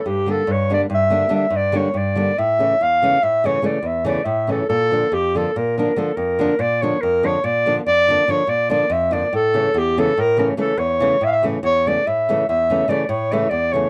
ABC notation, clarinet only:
X:1
M:11/8
L:1/16
Q:1/4=142
K:none
V:1 name="Clarinet"
G2 A2 ^c2 d2 e4 e2 d2 c2 d4 | e4 f4 e2 ^c2 d2 e2 d2 e2 A2 | A4 G2 A2 _B2 B2 A2 B4 d2 ^c2 | _B2 ^c2 d4 d4 c2 d2 d2 e2 d2 |
A4 G2 A2 _B2 B2 A2 ^c4 e/2 f/2 e z2 | ^c2 d2 e4 e4 d3/2 d/2 c2 e2 d2 c2 |]